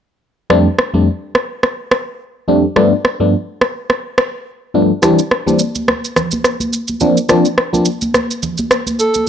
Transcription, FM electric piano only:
0.50 F2 G3 A3 C4 D4
0.94 F2 G3 A3 C4 D4
2.48 F2 G3 A3 C4 D4
2.76 G2 F3 A3 B3 D4
3.20 G2 F3 A3 B3 D4
4.74 G2 F3 A3 B3 D4
5.02 E3 G3 C4 D4
5.46 E3 G3 C4 D4
7.01 F3 A#3 C4 D4
7.29 F3 A#3 C4 D4
7.73 F3 A#3 C4 D4

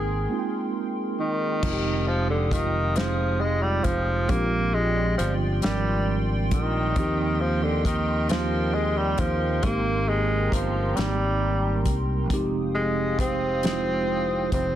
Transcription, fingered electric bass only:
Already playing: G#1
1.64 F1
3.86 F1
4.30 A#1
5.20 G1
5.66 G#1
6.53 A#1
6.98 D#2
9.20 D#2
9.64 G#1
10.53 G1
10.98 G#1
11.87 C2
12.31 F1
14.53 F1

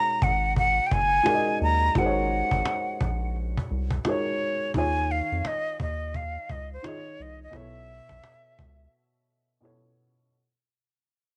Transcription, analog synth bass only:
0.23 G#1
0.92 F#1
1.61 D#2
1.96 G#1
2.52 G#1
3.01 A#1
3.71 C2
4.75 D#2
5.32 F2
5.80 D#2
6.50 C#2
7.20 C2
7.54 B1
8.09 B1
8.59 C#2

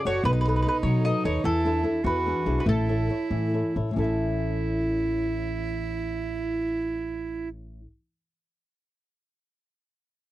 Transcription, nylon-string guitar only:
0.06 F#4 A4 C#5
0.26 B3
0.48 A4 B4 D#5
0.66 A4 B4 D#5
0.85 F#3
1.06 A4 B4 D#5
1.25 A4 B4 D#5
1.44 E3
1.65 D4 E4 A4
1.83 D4 E4 A4
2.04 E3
2.26 D4 E4 G#4
2.46 D4 E4 G#4
2.66 A3
2.89 E4 A4 C#5
3.10 E4 A4 C#5
3.31 E3
3.54 E4 A4 C#5
3.76 E4 A4 C#5
3.91 A2 E3
3.96 C#4 A4
4.02 E5 A5

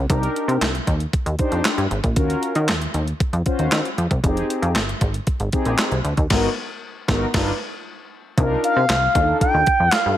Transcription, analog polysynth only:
0.09 D4 D#4 G4 A#4
1.38 D4 D#4 G4 C5
2.16 C#4 F4 F#4 A#4
3.45 C#4 F4 F#4 C5
4.24 C4 D#4 G4 G#4
5.53 C4 D#4 G4 G#4
6.31 B3 D#4 F#4 A#4
7.08 B3 D#4 F#4 A#4
7.34 D4 D#4 F4 B4
8.38 D4 D#4 F4 A#4
9.15 D4 D#4 F4 A4
10.05 D4 D#4 F4 A4

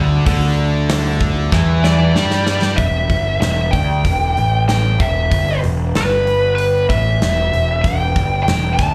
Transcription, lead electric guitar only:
1.84 D5
2.77 E5
3.41 E5
3.71 G5
4.68 G5
5.00 E5
5.96 B4
6.55 B4
6.89 E5
7.81 G5
8.43 G5
8.74 A5

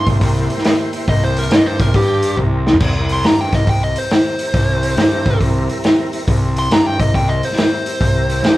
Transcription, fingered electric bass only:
0.07 C2
0.21 C2
1.08 C2
1.51 G2
1.80 C2
1.95 G2
2.38 C2
2.81 C2
3.24 G2
3.53 C2
3.68 C2
4.54 C2
4.97 G2
5.26 C2
5.40 C2
6.27 C2
6.71 G2
7.00 C2
7.14 C2
8.00 C2
8.43 G2

